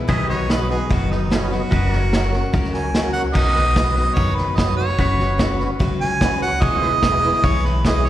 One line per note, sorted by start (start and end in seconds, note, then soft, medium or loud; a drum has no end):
0.08 0.77 B1 medium
0.08 0.49 B2 medium
0.08 0.49 D#3 medium
0.08 0.48 F#3 loud
0.08 0.48 B3 medium
0.08 0.49 D#4 loud
0.08 0.34 G#4 medium
0.08 1.71 B4 medium
0.08 0.50 B4 loud
0.08 0.28 D#5 loud
0.08 0.31 E5 medium
0.08 kick loud
0.08 snare soft
0.30 0.52 C#5 medium
0.30 1.72 D#5 medium
0.30 snare soft
0.34 1.70 F#4 medium
0.48 0.69 F#3 medium
0.48 0.70 B3 medium
0.48 0.69 D#4 medium
0.48 0.80 F#4 medium
0.48 0.80 B4 medium
0.48 0.70 B4 medium
0.48 0.68 B4 medium
0.48 0.81 D#5 medium
0.48 snare loud
0.48 hi-hat pedal medium
0.69 0.89 F#3 soft
0.69 0.90 B3 soft
0.69 0.90 D#4 soft
0.69 0.93 G#4 medium
0.69 0.90 B4 medium
0.69 snare soft
0.89 1.59 F#1 medium
0.89 1.31 B2 medium
0.89 1.31 D#3 medium
0.89 1.30 F#3 medium
0.89 1.30 B3 medium
0.89 1.31 D#4 medium
0.89 1.13 F#4 medium
0.89 1.32 B4 medium
0.89 kick loud
0.89 snare soft
1.10 1.34 D#4 medium
1.10 1.26 F#4 medium
1.10 1.26 B4 medium
1.10 1.27 D#5 medium
1.10 snare soft
1.30 1.51 F#3 medium
1.30 1.51 B3 medium
1.30 1.54 C#4 medium
1.30 1.50 D#4 medium
1.30 1.62 F#4 medium
1.30 1.62 B4 medium
1.30 1.49 B4 medium
1.30 1.63 D#5 medium
1.30 snare loud
1.30 hi-hat pedal medium
1.50 1.70 F#3 soft
1.50 1.71 B3 soft
1.50 1.72 D#4 soft
1.50 2.71 F#4 medium
1.50 1.71 B4 medium
1.50 snare soft
1.71 2.40 F#1 medium
1.71 2.11 F#3 medium
1.71 2.12 C#4 medium
1.71 3.33 F#4 medium
1.71 2.13 F#4 medium
1.71 2.13 A#4 medium
1.71 1.92 B4 medium
1.71 1.98 D#5 medium
1.71 kick medium
1.71 snare soft
1.92 3.34 A#4 medium
1.92 snare soft
1.98 3.34 C#5 medium
2.12 2.33 F#3 medium
2.12 2.33 C#4 medium
2.12 2.44 F#4 medium
2.12 2.32 F#4 medium
2.12 2.44 A#4 medium
2.12 2.31 A#4 medium
2.12 2.45 C#5 medium
2.12 snare loud
2.12 hi-hat pedal medium
2.32 2.52 C#4 soft
2.32 2.53 F#4 soft
2.32 2.53 A#4 soft
2.32 snare soft
2.53 3.22 C#2 medium
2.53 2.93 F#3 medium
2.53 2.94 C#4 medium
2.53 2.95 F#4 medium
2.53 2.95 A#4 medium
2.53 kick loud
2.53 snare soft
2.64 snare soft
2.74 2.89 F#4 medium
2.74 2.90 A#4 medium
2.74 2.90 C#5 medium
2.74 3.12 G#5 medium
2.74 snare soft
2.94 3.15 F#3 medium
2.94 3.15 C#4 medium
2.94 3.26 F#4 medium
2.94 3.14 F#4 medium
2.94 3.26 A#4 medium
2.94 3.13 A#4 medium
2.94 3.26 C#5 medium
2.94 snare loud
2.94 hi-hat pedal medium
3.13 3.36 F#4 soft
3.13 3.35 A#4 medium
3.13 3.23 F#5 medium
3.13 snare soft
3.17 3.36 C#4 soft
3.33 4.04 B1 medium
3.33 3.55 B2 medium
3.33 3.56 D#3 medium
3.33 3.56 F#3 medium
3.33 3.56 B3 medium
3.33 3.55 D#4 medium
3.33 4.96 F#4 medium
3.33 3.55 A#4 medium
3.33 3.54 B4 medium
3.33 4.16 D#5 loud
3.33 4.97 D#5 medium
3.33 kick loud
3.33 snare soft
3.33 crash medium
3.55 3.74 F#3 soft
3.55 3.75 B3 soft
3.55 3.76 D#4 soft
3.55 4.97 B4 medium
3.55 3.76 B4 soft
3.55 snare soft
3.75 3.96 F#3 medium
3.75 3.96 B3 medium
3.75 3.95 D#4 medium
3.75 4.07 F#4 medium
3.75 4.07 B4 medium
3.75 3.94 B4 medium
3.75 4.08 D#5 medium
3.75 kick medium
3.75 snare loud
3.75 hi-hat pedal medium
3.95 4.15 F#3 soft
3.95 4.15 B3 soft
3.95 4.16 D#4 medium
3.95 4.16 B4 medium
3.95 snare soft
4.15 4.85 F#2 medium
4.15 4.57 B2 medium
4.15 4.57 D#3 medium
4.15 4.56 F#3 medium
4.15 4.57 B3 medium
4.15 4.57 D#4 medium
4.15 4.59 B4 medium
4.15 4.37 C#5 medium
4.15 kick loud
4.15 snare soft
4.35 4.58 B4 medium
4.35 snare soft
4.56 4.97 F#3 medium
4.56 4.99 B3 medium
4.56 4.99 D#4 medium
4.56 4.89 F#4 medium
4.56 4.89 B4 medium
4.56 5.00 B4 medium
4.56 4.89 C#5 medium
4.56 4.76 D#5 medium
4.56 kick medium
4.56 snare loud
4.56 hi-hat pedal medium
4.77 5.55 C#5 medium
4.77 snare soft
4.88 snare soft
4.98 5.67 F#1 medium
4.98 5.19 F#3 medium
4.98 5.19 C#4 medium
4.98 6.61 F#4 medium
4.98 5.19 F#4 medium
4.98 5.17 B4 medium
4.98 6.61 B4 medium
4.98 6.62 C#5 medium
4.98 kick medium
4.98 snare soft
5.19 5.38 C#4 soft
5.19 5.39 F#4 soft
5.19 5.39 B4 soft
5.19 snare soft
5.38 5.59 F#3 medium
5.38 5.60 C#4 medium
5.38 5.70 F#4 medium
5.38 5.59 F#4 medium
5.38 5.71 B4 medium
5.38 5.58 B4 medium
5.38 5.71 C#5 medium
5.38 kick medium
5.38 snare loud
5.38 hi-hat pedal medium
5.59 5.79 C#4 soft
5.59 5.80 F#4 soft
5.59 5.80 B4 medium
5.59 snare soft
5.79 6.49 C#2 medium
5.79 6.19 F#3 medium
5.79 6.20 C#4 medium
5.79 6.21 F#4 medium
5.79 6.22 B4 medium
5.79 kick medium
5.79 snare soft
6.01 6.39 G#5 loud
6.01 snare soft
6.20 6.61 F#3 medium
6.20 6.62 C#4 medium
6.20 6.52 F#4 medium
6.20 6.62 F#4 medium
6.20 6.52 B4 medium
6.20 6.62 B4 medium
6.20 6.53 C#5 medium
6.20 kick medium
6.20 snare loud
6.20 hi-hat pedal medium
6.41 6.64 F#5 loud
6.41 snare soft
6.61 7.30 E1 loud
6.61 6.82 E3 medium
6.61 6.82 G#3 medium
6.61 6.83 B3 medium
6.61 6.82 E4 medium
6.61 6.86 F#4 medium
6.61 8.10 G#4 medium
6.61 6.81 B4 medium
6.61 6.88 C#5 medium
6.61 7.47 D#5 loud
6.61 kick loud
6.61 snare soft
6.82 7.02 B3 soft
6.82 7.03 E4 soft
6.82 7.03 B4 soft
6.82 snare soft
6.86 8.10 E4 medium
6.86 8.10 B4 medium
7.02 7.23 G#3 medium
7.02 7.23 B3 medium
7.02 7.34 E4 medium
7.02 7.23 E4 medium
7.02 7.34 G#4 medium
7.02 7.34 B4 medium
7.02 7.22 B4 medium
7.02 kick medium
7.02 snare loud
7.02 hi-hat pedal medium
7.23 7.44 B3 soft
7.23 7.44 E4 medium
7.23 7.44 B4 medium
7.23 snare soft
7.33 snare soft
7.44 8.10 B1 medium
7.44 7.85 E3 medium
7.44 7.82 G#3 medium
7.44 7.84 B3 medium
7.44 7.84 E4 medium
7.44 7.85 B4 medium
7.44 7.68 C#5 medium
7.44 kick loud
7.44 snare soft
7.64 7.85 B4 medium
7.64 snare soft
7.83 8.10 G#3 medium
7.83 8.10 B3 medium
7.83 8.10 E4 medium
7.83 8.10 G#4 medium
7.83 8.10 B4 medium
7.83 8.10 C#5 medium
7.83 8.08 D#5 medium
7.83 kick medium
7.83 snare loud
7.83 hi-hat pedal medium
8.05 snare soft